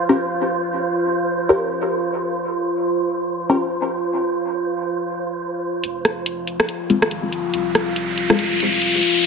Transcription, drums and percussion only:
5.84 closed hi-hat
6.05 cross-stick, closed hi-hat
6.26 closed hi-hat
6.47 closed hi-hat
6.60 cross-stick
6.69 closed hi-hat
6.90 closed hi-hat
7.02 cross-stick
7.11 closed hi-hat
7.32 closed hi-hat
7.54 closed hi-hat
7.75 cross-stick, closed hi-hat
7.96 closed hi-hat
8.18 closed hi-hat
8.30 cross-stick
8.39 closed hi-hat
8.60 closed hi-hat
8.82 closed hi-hat
9.03 closed hi-hat

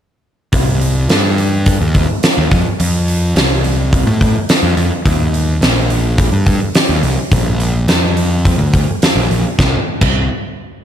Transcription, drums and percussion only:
0.53 kick, open hi-hat
0.81 open hi-hat
1.09 snare, open hi-hat
1.38 open hi-hat
1.66 kick, open hi-hat
1.95 kick, open hi-hat
2.23 snare, open hi-hat
2.51 kick, open hi-hat
2.80 open hi-hat
3.08 open hi-hat
3.36 snare, open hi-hat
3.64 open hi-hat
3.93 kick, open hi-hat
4.21 kick, open hi-hat
4.49 snare, open hi-hat
4.77 open hi-hat
5.06 kick, open hi-hat
5.34 open hi-hat
5.62 snare, open hi-hat
5.90 open hi-hat
6.18 kick, open hi-hat
6.46 kick, open hi-hat
6.75 snare, open hi-hat
7.03 open hi-hat
7.31 kick, open hi-hat
7.60 open hi-hat
7.88 snare, open hi-hat
8.17 open hi-hat
8.45 kick, open hi-hat
8.73 kick, open hi-hat
9.02 snare, open hi-hat
9.31 open hi-hat
9.59 kick, snare
10.01 kick, crash

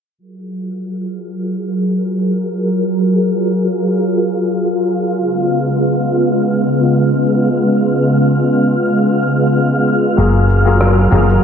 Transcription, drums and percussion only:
10.18 shaker
10.49 shaker
10.66 shaker
10.81 cross-stick, shaker
11.12 mid tom, shaker
11.29 shaker

